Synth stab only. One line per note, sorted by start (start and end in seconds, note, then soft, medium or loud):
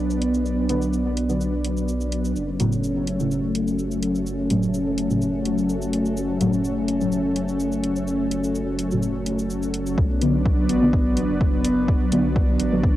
0.69 0.84 D3 medium
0.69 0.84 F#3 medium
0.69 0.84 B3 medium
1.29 1.43 D3 medium
1.29 1.43 F#3 medium
1.29 1.43 B3 medium
2.60 2.74 A2 medium
2.60 2.74 C#3 medium
2.60 2.74 F#3 loud
3.20 3.34 A2 medium
3.20 3.34 C#3 medium
3.20 3.34 F#3 medium
4.50 4.65 A2 medium
4.50 4.65 C#3 medium
4.50 4.65 F#3 medium
5.10 5.24 A2 medium
5.10 5.24 C#3 medium
5.10 5.24 F#3 medium
6.41 6.55 A2 medium
6.41 6.55 C#3 medium
6.41 6.55 F#3 loud
7.01 7.15 A2 medium
7.01 7.15 C#3 medium
7.01 7.15 F#3 medium
8.91 9.05 A2 medium
8.91 9.05 C#3 medium
8.91 9.05 F#3 medium
10.22 10.36 D3 loud
10.22 10.36 F#3 medium
10.22 10.36 B3 loud
10.82 10.96 D3 medium
10.82 10.96 F#3 medium
10.82 10.96 B3 medium
12.12 12.27 D3 medium
12.12 12.27 F#3 medium
12.12 12.27 B3 medium
12.72 12.86 D3 medium
12.72 12.86 F#3 medium
12.72 12.86 B3 medium